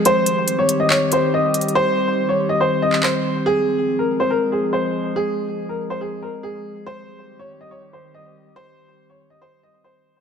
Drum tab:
HH |x-----x-----x-----x-----------x-----------x-x-x-|------------------------------------------------|------------------------------------------------|------------------------------------------------|
CP |------------------------x-----------------------|---------------------------------x--x-----------|------------------------------------------------|------------------------------------------------|

HH |------------------------------------------------|------------------------------------------------|
CP |------------------------------------------------|------------------------------------------------|